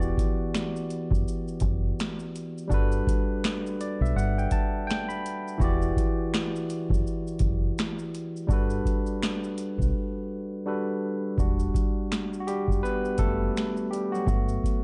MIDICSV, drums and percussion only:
0, 0, Header, 1, 2, 480
1, 0, Start_track
1, 0, Key_signature, 1, "minor"
1, 0, Tempo, 722892
1, 1793, Time_signature, 4, 2, 24, 8
1, 9852, End_track
2, 0, Start_track
2, 0, Title_t, "Drums"
2, 14, Note_on_c, 9, 82, 54
2, 80, Note_off_c, 9, 82, 0
2, 115, Note_on_c, 9, 36, 90
2, 126, Note_on_c, 9, 42, 65
2, 126, Note_on_c, 9, 82, 40
2, 182, Note_off_c, 9, 36, 0
2, 193, Note_off_c, 9, 42, 0
2, 193, Note_off_c, 9, 82, 0
2, 362, Note_on_c, 9, 26, 86
2, 367, Note_on_c, 9, 38, 121
2, 373, Note_on_c, 9, 82, 75
2, 428, Note_off_c, 9, 26, 0
2, 433, Note_off_c, 9, 38, 0
2, 439, Note_off_c, 9, 82, 0
2, 506, Note_on_c, 9, 82, 50
2, 573, Note_off_c, 9, 82, 0
2, 600, Note_on_c, 9, 42, 65
2, 600, Note_on_c, 9, 82, 51
2, 667, Note_off_c, 9, 42, 0
2, 667, Note_off_c, 9, 82, 0
2, 735, Note_on_c, 9, 36, 84
2, 761, Note_on_c, 9, 82, 41
2, 802, Note_off_c, 9, 36, 0
2, 827, Note_off_c, 9, 82, 0
2, 851, Note_on_c, 9, 82, 70
2, 917, Note_off_c, 9, 82, 0
2, 983, Note_on_c, 9, 82, 45
2, 1049, Note_off_c, 9, 82, 0
2, 1063, Note_on_c, 9, 42, 67
2, 1063, Note_on_c, 9, 82, 44
2, 1070, Note_on_c, 9, 36, 88
2, 1129, Note_off_c, 9, 42, 0
2, 1129, Note_off_c, 9, 82, 0
2, 1137, Note_off_c, 9, 36, 0
2, 1326, Note_on_c, 9, 82, 61
2, 1329, Note_on_c, 9, 26, 88
2, 1334, Note_on_c, 9, 38, 104
2, 1392, Note_off_c, 9, 82, 0
2, 1395, Note_off_c, 9, 26, 0
2, 1400, Note_off_c, 9, 38, 0
2, 1457, Note_on_c, 9, 82, 48
2, 1524, Note_off_c, 9, 82, 0
2, 1564, Note_on_c, 9, 42, 69
2, 1564, Note_on_c, 9, 82, 44
2, 1631, Note_off_c, 9, 42, 0
2, 1631, Note_off_c, 9, 82, 0
2, 1713, Note_on_c, 9, 82, 43
2, 1780, Note_off_c, 9, 82, 0
2, 1794, Note_on_c, 9, 36, 109
2, 1803, Note_on_c, 9, 82, 77
2, 1860, Note_off_c, 9, 36, 0
2, 1869, Note_off_c, 9, 82, 0
2, 1939, Note_on_c, 9, 82, 55
2, 2005, Note_off_c, 9, 82, 0
2, 2038, Note_on_c, 9, 36, 93
2, 2050, Note_on_c, 9, 42, 63
2, 2050, Note_on_c, 9, 82, 48
2, 2105, Note_off_c, 9, 36, 0
2, 2116, Note_off_c, 9, 42, 0
2, 2116, Note_off_c, 9, 82, 0
2, 2286, Note_on_c, 9, 26, 92
2, 2291, Note_on_c, 9, 38, 109
2, 2297, Note_on_c, 9, 82, 78
2, 2352, Note_off_c, 9, 26, 0
2, 2357, Note_off_c, 9, 38, 0
2, 2363, Note_off_c, 9, 82, 0
2, 2434, Note_on_c, 9, 82, 45
2, 2501, Note_off_c, 9, 82, 0
2, 2528, Note_on_c, 9, 42, 78
2, 2528, Note_on_c, 9, 82, 54
2, 2594, Note_off_c, 9, 42, 0
2, 2594, Note_off_c, 9, 82, 0
2, 2693, Note_on_c, 9, 82, 47
2, 2760, Note_off_c, 9, 82, 0
2, 2778, Note_on_c, 9, 82, 62
2, 2845, Note_off_c, 9, 82, 0
2, 2913, Note_on_c, 9, 82, 46
2, 2980, Note_off_c, 9, 82, 0
2, 2995, Note_on_c, 9, 42, 69
2, 2995, Note_on_c, 9, 82, 46
2, 2997, Note_on_c, 9, 36, 81
2, 3061, Note_off_c, 9, 42, 0
2, 3061, Note_off_c, 9, 82, 0
2, 3063, Note_off_c, 9, 36, 0
2, 3254, Note_on_c, 9, 82, 57
2, 3257, Note_on_c, 9, 26, 87
2, 3262, Note_on_c, 9, 38, 112
2, 3321, Note_off_c, 9, 82, 0
2, 3324, Note_off_c, 9, 26, 0
2, 3329, Note_off_c, 9, 38, 0
2, 3386, Note_on_c, 9, 82, 44
2, 3452, Note_off_c, 9, 82, 0
2, 3491, Note_on_c, 9, 42, 63
2, 3491, Note_on_c, 9, 82, 43
2, 3558, Note_off_c, 9, 42, 0
2, 3558, Note_off_c, 9, 82, 0
2, 3638, Note_on_c, 9, 82, 42
2, 3704, Note_off_c, 9, 82, 0
2, 3716, Note_on_c, 9, 36, 104
2, 3729, Note_on_c, 9, 82, 66
2, 3783, Note_off_c, 9, 36, 0
2, 3796, Note_off_c, 9, 82, 0
2, 3864, Note_on_c, 9, 82, 51
2, 3930, Note_off_c, 9, 82, 0
2, 3961, Note_on_c, 9, 36, 85
2, 3971, Note_on_c, 9, 42, 62
2, 3971, Note_on_c, 9, 82, 47
2, 4027, Note_off_c, 9, 36, 0
2, 4038, Note_off_c, 9, 42, 0
2, 4038, Note_off_c, 9, 82, 0
2, 4208, Note_on_c, 9, 26, 93
2, 4213, Note_on_c, 9, 38, 114
2, 4219, Note_on_c, 9, 82, 75
2, 4274, Note_off_c, 9, 26, 0
2, 4279, Note_off_c, 9, 38, 0
2, 4285, Note_off_c, 9, 82, 0
2, 4355, Note_on_c, 9, 82, 51
2, 4422, Note_off_c, 9, 82, 0
2, 4448, Note_on_c, 9, 42, 76
2, 4448, Note_on_c, 9, 82, 50
2, 4515, Note_off_c, 9, 42, 0
2, 4515, Note_off_c, 9, 82, 0
2, 4580, Note_on_c, 9, 36, 76
2, 4608, Note_on_c, 9, 82, 46
2, 4646, Note_off_c, 9, 36, 0
2, 4674, Note_off_c, 9, 82, 0
2, 4695, Note_on_c, 9, 82, 62
2, 4762, Note_off_c, 9, 82, 0
2, 4830, Note_on_c, 9, 82, 46
2, 4897, Note_off_c, 9, 82, 0
2, 4909, Note_on_c, 9, 42, 67
2, 4909, Note_on_c, 9, 82, 44
2, 4914, Note_on_c, 9, 36, 85
2, 4975, Note_off_c, 9, 42, 0
2, 4975, Note_off_c, 9, 82, 0
2, 4981, Note_off_c, 9, 36, 0
2, 5168, Note_on_c, 9, 82, 62
2, 5172, Note_on_c, 9, 26, 84
2, 5177, Note_on_c, 9, 38, 106
2, 5235, Note_off_c, 9, 82, 0
2, 5238, Note_off_c, 9, 26, 0
2, 5243, Note_off_c, 9, 38, 0
2, 5305, Note_on_c, 9, 82, 47
2, 5371, Note_off_c, 9, 82, 0
2, 5409, Note_on_c, 9, 42, 65
2, 5409, Note_on_c, 9, 82, 42
2, 5475, Note_off_c, 9, 42, 0
2, 5475, Note_off_c, 9, 82, 0
2, 5555, Note_on_c, 9, 82, 42
2, 5621, Note_off_c, 9, 82, 0
2, 5635, Note_on_c, 9, 36, 113
2, 5647, Note_on_c, 9, 82, 66
2, 5701, Note_off_c, 9, 36, 0
2, 5714, Note_off_c, 9, 82, 0
2, 5778, Note_on_c, 9, 82, 51
2, 5844, Note_off_c, 9, 82, 0
2, 5878, Note_on_c, 9, 36, 82
2, 5888, Note_on_c, 9, 42, 65
2, 5888, Note_on_c, 9, 82, 40
2, 5945, Note_off_c, 9, 36, 0
2, 5955, Note_off_c, 9, 42, 0
2, 5955, Note_off_c, 9, 82, 0
2, 6020, Note_on_c, 9, 82, 47
2, 6086, Note_off_c, 9, 82, 0
2, 6126, Note_on_c, 9, 26, 93
2, 6131, Note_on_c, 9, 38, 126
2, 6137, Note_on_c, 9, 82, 84
2, 6192, Note_off_c, 9, 26, 0
2, 6197, Note_off_c, 9, 38, 0
2, 6203, Note_off_c, 9, 82, 0
2, 6267, Note_on_c, 9, 82, 49
2, 6334, Note_off_c, 9, 82, 0
2, 6360, Note_on_c, 9, 42, 79
2, 6360, Note_on_c, 9, 82, 55
2, 6426, Note_off_c, 9, 42, 0
2, 6426, Note_off_c, 9, 82, 0
2, 6497, Note_on_c, 9, 36, 83
2, 6520, Note_on_c, 9, 82, 46
2, 6564, Note_off_c, 9, 36, 0
2, 6587, Note_off_c, 9, 82, 0
2, 7555, Note_on_c, 9, 36, 107
2, 7565, Note_on_c, 9, 82, 70
2, 7622, Note_off_c, 9, 36, 0
2, 7632, Note_off_c, 9, 82, 0
2, 7699, Note_on_c, 9, 82, 48
2, 7766, Note_off_c, 9, 82, 0
2, 7799, Note_on_c, 9, 36, 87
2, 7808, Note_on_c, 9, 42, 57
2, 7808, Note_on_c, 9, 82, 42
2, 7865, Note_off_c, 9, 36, 0
2, 7874, Note_off_c, 9, 42, 0
2, 7874, Note_off_c, 9, 82, 0
2, 8046, Note_on_c, 9, 26, 90
2, 8051, Note_on_c, 9, 38, 103
2, 8057, Note_on_c, 9, 82, 74
2, 8112, Note_off_c, 9, 26, 0
2, 8117, Note_off_c, 9, 38, 0
2, 8124, Note_off_c, 9, 82, 0
2, 8190, Note_on_c, 9, 82, 48
2, 8257, Note_off_c, 9, 82, 0
2, 8286, Note_on_c, 9, 42, 71
2, 8286, Note_on_c, 9, 82, 47
2, 8352, Note_off_c, 9, 42, 0
2, 8352, Note_off_c, 9, 82, 0
2, 8419, Note_on_c, 9, 36, 71
2, 8446, Note_on_c, 9, 82, 43
2, 8485, Note_off_c, 9, 36, 0
2, 8512, Note_off_c, 9, 82, 0
2, 8535, Note_on_c, 9, 82, 65
2, 8602, Note_off_c, 9, 82, 0
2, 8666, Note_on_c, 9, 82, 43
2, 8733, Note_off_c, 9, 82, 0
2, 8751, Note_on_c, 9, 42, 69
2, 8751, Note_on_c, 9, 82, 46
2, 8754, Note_on_c, 9, 36, 82
2, 8817, Note_off_c, 9, 42, 0
2, 8817, Note_off_c, 9, 82, 0
2, 8821, Note_off_c, 9, 36, 0
2, 9010, Note_on_c, 9, 82, 55
2, 9013, Note_on_c, 9, 26, 87
2, 9018, Note_on_c, 9, 38, 96
2, 9076, Note_off_c, 9, 82, 0
2, 9080, Note_off_c, 9, 26, 0
2, 9085, Note_off_c, 9, 38, 0
2, 9143, Note_on_c, 9, 82, 47
2, 9210, Note_off_c, 9, 82, 0
2, 9251, Note_on_c, 9, 42, 60
2, 9251, Note_on_c, 9, 82, 42
2, 9318, Note_off_c, 9, 42, 0
2, 9318, Note_off_c, 9, 82, 0
2, 9394, Note_on_c, 9, 82, 42
2, 9461, Note_off_c, 9, 82, 0
2, 9474, Note_on_c, 9, 36, 103
2, 9483, Note_on_c, 9, 82, 70
2, 9540, Note_off_c, 9, 36, 0
2, 9549, Note_off_c, 9, 82, 0
2, 9619, Note_on_c, 9, 82, 50
2, 9685, Note_off_c, 9, 82, 0
2, 9719, Note_on_c, 9, 36, 80
2, 9733, Note_on_c, 9, 42, 60
2, 9733, Note_on_c, 9, 82, 44
2, 9786, Note_off_c, 9, 36, 0
2, 9799, Note_off_c, 9, 42, 0
2, 9799, Note_off_c, 9, 82, 0
2, 9852, End_track
0, 0, End_of_file